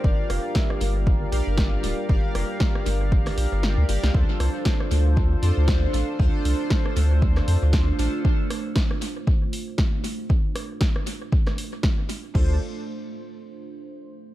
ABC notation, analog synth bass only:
X:1
M:4/4
L:1/16
Q:"Swing 16ths" 1/4=117
K:Dm
V:1 name="Analog synth bass" clef=bass
G,,, z F,,, z3 G,,,3 z B,,, G,,,2 z D,,, z | G,,, z F,,, z3 G,,,3 z B,,, G,,,2 D,, G,,, C,, | D,, z C,, z3 D,,3 z F,, D,,2 z A,,, z | D,, z C,, z3 D,,3 z F,, D,,2 z A,,, z |
z16 | z16 | D,,2 z12 z2 |]